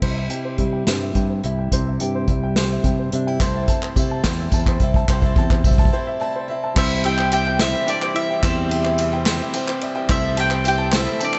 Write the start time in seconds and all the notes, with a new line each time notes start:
0.02 C2 C3 E4 C5, kick, crash
0.16 E5
0.30 G4 G5, closed hi-hat
0.45 C5
0.58 C3 G3 E5, kick, closed hi-hat
0.73 G5
0.87 G2 C4 C5, snare, closed hi-hat
1.01 E5
1.15 G2 G5, kick, closed hi-hat
1.30 C5
1.43 C2 E4 E5, closed hi-hat
1.59 G5
1.72 C2 C3 E4 C5, kick, closed hi-hat
1.87 E5
2.00 G2 G4 G5, closed hi-hat
2.15 C5
2.28 C2 G3 E5, kick, closed hi-hat
2.43 G5
2.56 C4 C5, snare, closed hi-hat
2.71 E5
2.84 G2 C3 G5, kick, closed hi-hat
2.99 C5
3.12 C3 D4 E5, closed hi-hat
3.27 E4 G5
3.38 C2 C3 A3 C4 E4 C5, kick, clap, closed hi-hat, tambourine
3.42 E4 A4
3.55 E5
3.68 C4 E4 A4 A5, kick, closed hi-hat, tambourine
3.82 C5, clap
3.96 C3 A3 C4 E4 A4 E5, kick, closed hi-hat, tambourine
4.11 A5
4.24 E2 C3 A3 C4 E4 A4 C5, kick, snare, clap, closed hi-hat
4.40 E5
4.52 E2 A3 C4 E4 A4 A5, kick, closed hi-hat, tambourine
4.66 C5, kick, clap
4.80 C2 E4 A4 E5, kick, closed hi-hat
4.84 C4
4.94 A5, kick
5.08 C2 C3 A3 C4 E4 A4 C5, kick, clap, tambourine
5.22 E5, kick, clap
5.36 E2 C4 E4 A4 A5, kick, clap
5.50 C5, kick, clap
5.64 C2 A3 C4 E4 A4 E5, kick, tambourine
5.71 kick
5.78 A5, kick, clap, tambourine
5.85 kick
5.93 C3 A3 C4 E4 A4 C5
6.07 E5
6.20 A3 C4 E4 A4 D5 A5
6.36 C5
6.48 C4 E4 A4 E5
6.64 A5
6.74 C2 C3 E3 G3 C4 E4 C5 E5, kick, clap, crash, tambourine
6.79 G4
6.92 E5
7.04 G3 C4 E4 G4 G5, ride
7.18 C4 E4 G4 C5, clap
7.32 G4 E5 G5, clap, ride, tambourine
7.46 C4 E4 G4 G5, clap
7.59 C3 G3 C4 E4 G4 C5 E5, snare, clap, ride
7.75 E5, tambourine
7.87 G3 C4 D4 E4 G4 D5 G5, ride, tambourine
8.01 C4 E4 G4 C5, clap, tambourine
8.15 E4 E5, ride
8.29 C4 E4 G4 G5
8.43 C2 E2 C3 G3 C4 E4 G4 C5 E5, kick, clap, ride, tambourine
8.58 E5
8.70 G3 C4 E4 G4 G5, ride
8.84 C4 E4 G4 C5, clap
8.98 E5, clap, ride, tambourine
9.11 C4 E4 G4 G5, clap
9.26 C3 G3 C4 E4 G4 C5, snare, clap, ride
9.40 E5, tambourine
9.53 G3 C4 E4 G4 G5, ride, tambourine
9.67 C4 E4 G4 C5, clap
9.81 D5 E5, ride
9.95 C4 E4 G4 G5
10.08 C2 C3 A3 C4 E4 A4 C5 E5, kick, clap, ride, tambourine
10.23 E5
10.37 A3 C4 E4 G4 A4 G5 A5, ride
10.50 C4 E4 A4 C5, clap
10.65 G4 E5 G5, clap, ride, tambourine
10.78 C4 E4 A4 A5, clap
10.92 C3 A3 C4 E4 A4 C5, snare, clap, ride
10.96 E5
11.06 E5, tambourine
11.19 A3 C4 D4 E4 A4 A5, ride, tambourine
11.24 D5
11.33 C4 E4 A4 C5, clap, tambourine